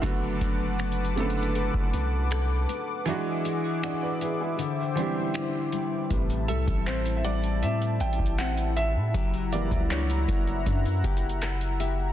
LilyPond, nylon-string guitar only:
\new Staff \with { instrumentName = "Nylon-string guitar" } { \time 4/4 \key a \dorian \tempo 4 = 79 <fis a'>8 d'8 b8 c'16 d'16 a'8 b8 a'8 b8 | <e gis'>8 e'16 fis'16 d'8 fis'8 d8 g8 e'8 g8 | <a, e'>8 g8 c'8 g8 c'8 e'8 c'8 e'8 | <fis g'>8 ais8 d'16 e'16 ais8 d'16 e'16 g'8 e'8 g'8 | }